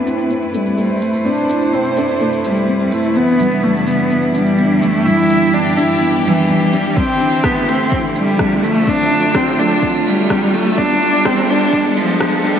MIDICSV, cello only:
0, 0, Header, 1, 2, 480
1, 0, Start_track
1, 0, Key_signature, 0, "minor"
1, 0, Tempo, 476190
1, 1261, Time_signature, 4, 2, 24, 8
1, 12696, End_track
2, 0, Start_track
2, 0, Title_t, "Cello"
2, 0, Program_c, 0, 42
2, 64, Note_on_c, 0, 60, 79
2, 303, Note_off_c, 0, 60, 0
2, 539, Note_on_c, 0, 55, 79
2, 1021, Note_on_c, 0, 57, 88
2, 1036, Note_off_c, 0, 55, 0
2, 1264, Note_on_c, 0, 62, 110
2, 1280, Note_off_c, 0, 57, 0
2, 1750, Note_on_c, 0, 60, 92
2, 1765, Note_off_c, 0, 62, 0
2, 1992, Note_on_c, 0, 62, 80
2, 2007, Note_off_c, 0, 60, 0
2, 2226, Note_off_c, 0, 62, 0
2, 2467, Note_on_c, 0, 55, 81
2, 2939, Note_on_c, 0, 57, 91
2, 2954, Note_off_c, 0, 55, 0
2, 3183, Note_on_c, 0, 59, 107
2, 3198, Note_off_c, 0, 57, 0
2, 3663, Note_on_c, 0, 57, 90
2, 3678, Note_off_c, 0, 59, 0
2, 3900, Note_on_c, 0, 59, 83
2, 3915, Note_off_c, 0, 57, 0
2, 4141, Note_off_c, 0, 59, 0
2, 4377, Note_on_c, 0, 55, 83
2, 4856, Note_on_c, 0, 57, 91
2, 4871, Note_off_c, 0, 55, 0
2, 5095, Note_on_c, 0, 64, 107
2, 5110, Note_off_c, 0, 57, 0
2, 5578, Note_on_c, 0, 62, 93
2, 5593, Note_off_c, 0, 64, 0
2, 5816, Note_on_c, 0, 64, 83
2, 5832, Note_off_c, 0, 62, 0
2, 6059, Note_off_c, 0, 64, 0
2, 6308, Note_on_c, 0, 52, 84
2, 6784, Note_on_c, 0, 55, 89
2, 6799, Note_off_c, 0, 52, 0
2, 7022, Note_on_c, 0, 60, 104
2, 7037, Note_off_c, 0, 55, 0
2, 7501, Note_on_c, 0, 59, 88
2, 7516, Note_off_c, 0, 60, 0
2, 7744, Note_on_c, 0, 60, 84
2, 7759, Note_off_c, 0, 59, 0
2, 7983, Note_off_c, 0, 60, 0
2, 8226, Note_on_c, 0, 55, 84
2, 8709, Note_on_c, 0, 57, 96
2, 8724, Note_off_c, 0, 55, 0
2, 8951, Note_on_c, 0, 62, 115
2, 8966, Note_off_c, 0, 57, 0
2, 9431, Note_on_c, 0, 60, 98
2, 9446, Note_off_c, 0, 62, 0
2, 9666, Note_on_c, 0, 62, 87
2, 9681, Note_off_c, 0, 60, 0
2, 9904, Note_off_c, 0, 62, 0
2, 10147, Note_on_c, 0, 55, 95
2, 10628, Note_on_c, 0, 57, 96
2, 10643, Note_off_c, 0, 55, 0
2, 10863, Note_on_c, 0, 62, 109
2, 10878, Note_off_c, 0, 57, 0
2, 11342, Note_on_c, 0, 60, 94
2, 11357, Note_off_c, 0, 62, 0
2, 11586, Note_on_c, 0, 62, 90
2, 11601, Note_off_c, 0, 60, 0
2, 11824, Note_off_c, 0, 62, 0
2, 12063, Note_on_c, 0, 53, 90
2, 12543, Note_on_c, 0, 55, 104
2, 12558, Note_off_c, 0, 53, 0
2, 12696, Note_off_c, 0, 55, 0
2, 12696, End_track
0, 0, End_of_file